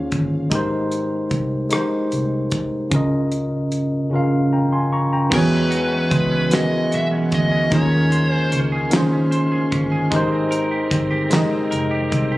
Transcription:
Already playing: D#3 A#3 C#4 F4 G#4 C5 C#5
0.12 G1, kick, closed hi-hat
0.50 G#1 G#3 D#4 G4, kick, closed hi-hat
0.54 A#4 C5
0.92 closed hi-hat
1.31 C2, kick, closed hi-hat
1.69 G#3 D#4 G4, muted fingered electric bass stroke, cross-stick, closed hi-hat
1.74 A#4 C5
2.12 C2, closed hi-hat
2.51 kick, closed hi-hat
2.90 C#2 C#3 C#4 F4, kick, closed hi-hat
2.94 A#4 D#5
3.32 closed hi-hat
3.72 closed hi-hat
4.10 C#3 C#4 F4
4.14 A#4 F5
4.53 G5 A#5
4.73 G#5 C6
4.92 A#5 C#6
5.13 G5 A#5
5.30 E2 E3 G#3 B3 E4 F#4 B4 C#5 F#5, kick, crash
5.34 G#4 C#5
5.51 G#3
5.71 F#4, closed hi-hat
5.92 C#4
6.11 C#2 G#3, kick, closed hi-hat
6.32 C#4
6.50 E3 B3 F#4, snare, closed hi-hat
6.54 G#4 A#4 D#5
6.71 G#3
6.91 B1 F#4 E5, closed hi-hat
7.11 C#4
7.31 D2 G#3 D#5, kick, closed hi-hat
7.51 C#4
7.69 D#2 D#3 A#3 C#4 F4 F5 C6, kick, closed hi-hat
7.74 G#4 A#4 C#5
7.91 C#4
8.12 C5, closed hi-hat
8.32 G#4 C5
8.52 C#2 C#4, closed hi-hat
8.72 G#4
8.90 D#3 A#3 C#4 F4, snare, closed hi-hat
8.95 G#4 C5
9.12 C#4
9.31 C5, closed hi-hat
9.52 G#4
9.72 G1 C#4, kick, closed hi-hat
9.92 G#4
10.11 G#1 G#3 D#4 G4 C5 G5 A#5, kick, closed hi-hat
10.15 A#4 C5
10.32 C4
10.51 A#4, closed hi-hat
10.71 G4
10.91 G1 C4, kick, closed hi-hat
11.11 G4
11.30 G#3 D#4 G4, snare, closed hi-hat
11.35 A#4 D#5
11.51 C4
11.71 F1 A#4, closed hi-hat
11.91 G4
12.12 C2 C4, kick, closed hi-hat
12.32 G4

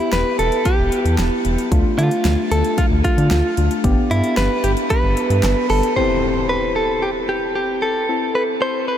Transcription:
Already playing: B3 E4 G4
0.12 E1 B4, snare, closed hi-hat
0.39 E1 A4, closed hi-hat
0.52 closed hi-hat
0.65 G4, kick, closed hi-hat
0.79 E1
0.92 closed hi-hat
1.05 E2, closed hi-hat
1.18 E1, snare, closed hi-hat
1.45 E1, closed hi-hat
1.58 closed hi-hat
1.72 D2 A3 D4 F4, kick, closed hi-hat
1.98 D3 F4, closed hi-hat
2.11 closed hi-hat
2.25 D2, snare, closed hi-hat
2.51 D2 A4, closed hi-hat
2.64 closed hi-hat
2.78 F4, kick, closed hi-hat
2.91 D2
3.04 F4, kick, closed hi-hat
3.18 D3, closed hi-hat
3.31 D2, snare, closed hi-hat
3.57 D2 A3 D4 F4, closed hi-hat
3.71 closed hi-hat
3.84 G1 B3 D4 G4, kick, closed hi-hat
4.11 G2 E4, closed hi-hat
4.24 closed hi-hat
4.37 G1 B4, snare, closed hi-hat
4.64 G1 G4, closed hi-hat
4.77 closed hi-hat
4.90 B4, kick, closed hi-hat
5.03 G1
5.17 closed hi-hat
5.30 G2, closed hi-hat
5.43 G1, snare, clap, closed hi-hat
5.70 G1 A4, open hi-hat
5.83 closed hi-hat
5.96 C4 E4 G4 C5, impact
6.49 B4
6.76 A4
7.02 G4
7.29 G4
7.55 G4
7.82 A4
8.09 C4 E4 A4
8.35 B4
8.62 C5
8.88 B4

